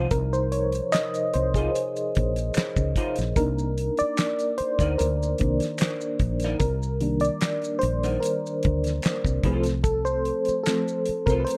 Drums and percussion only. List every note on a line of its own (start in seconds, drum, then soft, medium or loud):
0.11 kick loud
0.11 closed hi-hat medium
0.11 maracas soft
0.34 maracas soft
0.52 closed hi-hat medium
0.72 closed hi-hat medium
0.72 maracas soft
0.92 finger snap medium
0.92 snare loud
0.92 clap medium
0.92 closed hi-hat medium
0.92 maracas medium
1.14 closed hi-hat soft
1.14 maracas soft
1.34 closed hi-hat medium
1.54 kick medium
1.54 closed hi-hat medium
1.54 maracas soft
1.75 closed hi-hat medium
1.75 maracas medium
1.96 closed hi-hat soft
1.96 maracas soft
2.15 kick loud
2.15 closed hi-hat medium
2.36 closed hi-hat soft
2.36 maracas soft
2.54 finger snap medium
2.54 snare loud
2.54 clap medium
2.54 closed hi-hat medium
2.54 maracas medium
2.76 kick medium
2.76 maracas soft
2.96 kick medium
2.96 closed hi-hat medium
3.16 closed hi-hat medium
3.16 maracas soft
3.20 snare soft
3.36 kick loud
3.36 closed hi-hat medium
3.36 maracas medium
3.59 maracas soft
3.78 closed hi-hat medium
3.97 closed hi-hat soft
3.97 maracas soft
4.17 finger snap medium
4.17 snare loud
4.17 clap medium
4.17 closed hi-hat medium
4.17 maracas medium
4.39 closed hi-hat soft
4.39 maracas soft
4.58 closed hi-hat medium
4.79 kick medium
4.79 closed hi-hat medium
4.79 maracas soft
4.99 closed hi-hat medium
4.99 maracas medium
5.23 maracas soft
5.38 kick medium
5.38 closed hi-hat medium
5.60 snare soft
5.60 closed hi-hat soft
5.60 maracas soft
5.78 finger snap soft
5.78 snare loud
5.78 clap medium
5.78 closed hi-hat medium
5.78 maracas medium
6.01 maracas soft
6.19 kick medium
6.19 closed hi-hat medium
6.40 closed hi-hat medium
6.40 maracas soft
6.44 snare soft
6.60 kick loud
6.60 closed hi-hat medium
6.60 maracas medium
6.83 maracas soft
7.00 closed hi-hat medium
7.20 closed hi-hat medium
7.24 maracas soft
7.41 finger snap medium
7.41 snare loud
7.41 clap medium
7.41 closed hi-hat medium
7.41 maracas medium
7.62 closed hi-hat soft
7.62 maracas soft
7.81 closed hi-hat medium
8.03 closed hi-hat soft
8.03 maracas soft
8.23 closed hi-hat medium
8.23 maracas medium
8.46 maracas soft
8.63 kick loud
8.63 closed hi-hat medium
8.84 snare soft
8.84 closed hi-hat medium
8.84 maracas soft
9.02 finger snap soft
9.02 snare loud
9.02 clap medium
9.02 closed hi-hat medium
9.02 maracas medium
9.24 kick medium
9.24 maracas soft
9.43 kick medium
9.43 closed hi-hat medium
9.63 closed hi-hat medium
9.63 maracas soft
9.68 snare soft
9.84 kick loud
9.84 closed hi-hat medium
9.84 maracas medium
10.06 maracas soft
10.25 closed hi-hat medium
10.45 closed hi-hat medium
10.45 maracas soft
10.66 finger snap medium
10.66 snare loud
10.66 clap medium
10.66 closed hi-hat medium
10.66 maracas medium
10.88 maracas soft
11.06 closed hi-hat medium
11.27 kick medium
11.27 closed hi-hat soft
11.27 maracas soft
11.47 closed hi-hat medium
11.47 maracas medium